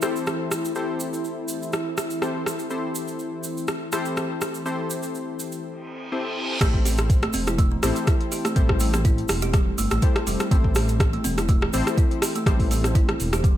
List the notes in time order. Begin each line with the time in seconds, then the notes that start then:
Already playing: E3 A3 C4 E4
0.02 C4 E4 G4 A4 C5, cross-stick, cabasa
0.16 cabasa
0.27 cross-stick, cabasa
0.51 cross-stick, cabasa
0.65 cabasa
0.75 C4 E4 G4 A4 C5, cabasa
1.00 cabasa
1.13 cabasa
1.24 cabasa
1.48 cabasa
1.63 cabasa
1.73 cross-stick, cabasa
1.97 cross-stick, cabasa
2.10 cabasa
2.22 C4 E4 G4 A4 C5, cross-stick, cabasa
2.46 cross-stick, cabasa
2.59 cabasa
2.70 C4 E4 G4 A4 C5, cabasa
2.95 cabasa
3.08 cabasa
3.19 cabasa
3.43 cabasa
3.57 cabasa
3.68 cross-stick, cabasa
3.92 C4 E4 G4 A4 C5, cross-stick, cabasa
4.05 cabasa
4.17 cross-stick, cabasa
4.41 cross-stick, cabasa
4.54 cabasa
4.66 C4 E4 G4 A4 C5, cabasa
4.90 cabasa
5.03 cabasa
5.15 cabasa
5.39 cabasa
5.52 cabasa
5.63 reverse cymbal
6.12 C4 E4 G4 A4 C5
6.61 A1 A3 C4 E4 G4 A4 C5, kick, cross-stick, closed hi-hat, crash, cabasa
6.74 kick
6.85 G4, open hi-hat, cabasa
6.98 cross-stick, closed hi-hat, cabasa
7.10 kick, closed hi-hat, cabasa
7.23 A3, cross-stick, closed hi-hat
7.33 E1 C4, open hi-hat, cabasa
7.47 E4, cross-stick, closed hi-hat, cabasa
7.58 A3, kick, closed hi-hat, cabasa
7.72 E3
7.83 A1 A3 C4 E4 G4 A4 C5, cross-stick, open hi-hat, cabasa
7.96 closed hi-hat, cabasa
8.07 E4, kick, cross-stick, closed hi-hat, cabasa
8.21 closed hi-hat
8.32 G4, open hi-hat, cabasa
8.45 A3, cross-stick, closed hi-hat, cabasa
8.56 A1 G3 C4 E4 G4 A4 C5, kick, closed hi-hat, cabasa
8.69 kick, cross-stick
8.80 A3, open hi-hat, cabasa
8.94 C4, cross-stick, closed hi-hat, cabasa
9.05 E4, kick, closed hi-hat, cabasa
9.18 closed hi-hat
9.28 E1, cross-stick, open hi-hat, cabasa
9.42 G4, closed hi-hat, cabasa
9.54 G3, kick, cross-stick, closed hi-hat, cabasa
9.78 G1 A3, open hi-hat, cabasa
9.91 A1 A3, cross-stick, closed hi-hat, cabasa
10.02 C4 E4 G4 A4 C5, kick, closed hi-hat, cabasa
10.16 cross-stick, closed hi-hat
10.27 E1 G3, open hi-hat, cabasa
10.40 cross-stick, closed hi-hat, cabasa
10.51 A1 A3 C4 E4 G4 A4 C5, kick, closed hi-hat, cabasa
10.64 kick
10.75 G4, cross-stick, open hi-hat, cabasa
10.89 closed hi-hat, cabasa
11.00 kick, cross-stick, closed hi-hat, cabasa
11.13 A3, closed hi-hat
11.24 E1 C4, open hi-hat, cabasa
11.38 E4, cross-stick, closed hi-hat, cabasa
11.48 A3, kick, closed hi-hat, cabasa
11.62 E3, cross-stick
11.73 A1 A3 C4 E4 G4 A4 C5, open hi-hat, cabasa
11.87 cross-stick, closed hi-hat, cabasa
11.98 E4, kick, closed hi-hat, cabasa
12.11 closed hi-hat
12.22 G4, cross-stick, open hi-hat, cabasa
12.35 A3, closed hi-hat, cabasa
12.46 A1 G3 C4 E4 G4 A4 C5, kick, cross-stick, closed hi-hat, cabasa
12.60 kick, open hi-hat
12.71 A3, open hi-hat, cabasa
12.84 C4, cross-stick, closed hi-hat, cabasa
12.95 E4, kick, closed hi-hat, cabasa
13.09 cross-stick, closed hi-hat
13.20 E1, open hi-hat, cabasa
13.33 G4, cross-stick, closed hi-hat, cabasa
13.44 G3, kick, closed hi-hat, cabasa